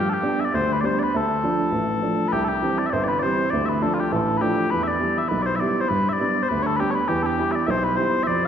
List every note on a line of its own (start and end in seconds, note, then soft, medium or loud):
0.00 0.23 G2 medium
0.09 0.40 G4 medium
0.09 0.13 A4 medium
0.22 0.47 G3 soft
0.22 0.47 B3 soft
0.22 0.47 D4 medium
0.40 0.45 E5 medium
0.45 0.55 D5 medium
0.53 0.83 D2 medium
0.53 0.73 C5 loud
0.73 0.81 B4 medium
0.81 1.07 G3 soft
0.81 1.07 B3 soft
0.81 1.08 D4 medium
0.81 0.85 D5 medium
0.85 0.99 C5 medium
0.99 1.16 B4 medium
0.99 1.03 D5 medium
1.14 1.43 D2 medium
1.14 2.28 A4 medium
1.43 1.67 F3 soft
1.43 1.68 A3 soft
1.43 1.68 D4 medium
1.72 2.02 A1 medium
2.02 2.26 F3 soft
2.02 2.27 A3 soft
2.02 2.27 D4 medium
2.28 2.32 B4 medium
2.32 2.62 C2 medium
2.32 2.44 G4 medium
2.44 2.79 G4 medium
2.44 2.48 A4 medium
2.62 2.86 E3 soft
2.62 2.86 G3 soft
2.62 2.87 C4 medium
2.79 2.86 D5 medium
2.86 2.93 D5 medium
2.86 2.90 E5 medium
2.93 3.22 G1 medium
2.93 3.04 C5 medium
3.04 3.08 D5 medium
3.08 3.19 B4 medium
3.19 3.47 E3 soft
3.19 3.50 C5 medium
3.19 3.23 D5 medium
3.24 3.47 G3 soft
3.24 3.48 C4 soft
3.50 3.81 D2 medium
3.50 3.65 D5 loud
3.65 3.82 B4 medium
3.65 3.69 E5 medium
3.82 4.06 F3 soft
3.82 4.06 A3 soft
3.82 4.06 D4 medium
3.82 3.94 A4 medium
3.94 4.00 F4 medium
4.00 4.12 G4 medium
4.12 4.41 A1 medium
4.12 4.37 A4 medium
4.37 4.41 B4 medium
4.41 4.65 F3 medium
4.41 4.66 A3 soft
4.41 4.66 D4 medium
4.41 4.70 G4 medium
4.70 5.00 E2 medium
4.70 4.83 B4 loud
4.83 4.87 E5 medium
4.87 5.18 D5 medium
5.00 5.24 G3 soft
5.00 5.24 B3 soft
5.00 5.25 E4 soft
5.18 5.28 E5 medium
5.28 5.60 B1 medium
5.28 5.43 B4 medium
5.43 5.56 C5 medium
5.43 5.46 D5 medium
5.56 5.81 D5 medium
5.56 5.60 E5 medium
5.61 5.85 G3 medium
5.61 5.85 B3 soft
5.61 5.85 E4 medium
5.81 5.89 C5 medium
5.89 6.19 G2 medium
5.89 6.09 B4 loud
6.09 6.20 D5 medium
6.09 6.13 E5 medium
6.20 6.44 G3 soft
6.20 6.44 B3 soft
6.20 6.44 D4 soft
6.20 6.43 D5 medium
6.43 6.49 C5 medium
6.49 6.79 D2 medium
6.49 6.62 B4 medium
6.62 6.76 A4 loud
6.62 6.66 C#5 loud
6.76 7.03 G3 soft
6.76 7.03 B3 soft
6.76 6.91 G4 medium
6.76 6.80 B4 medium
6.80 7.04 D4 medium
6.91 6.95 C#5 medium
6.95 7.08 B4 medium
7.08 7.38 E2 medium
7.08 7.23 G4 medium
7.23 7.52 G4 medium
7.23 7.26 A4 medium
7.38 7.62 G3 soft
7.38 7.62 B3 soft
7.38 7.63 E4 soft
7.52 7.66 D5 medium
7.52 7.55 E5 medium
7.66 7.97 B1 medium
7.66 7.70 E5 loud
7.70 7.84 C5 loud
7.84 7.97 B4 loud
7.97 8.21 G3 soft
7.97 8.22 B3 soft
7.97 8.22 E4 soft
7.97 8.23 C5 medium
8.23 8.48 F2 medium
8.23 8.45 D5 loud
8.23 8.27 E5 loud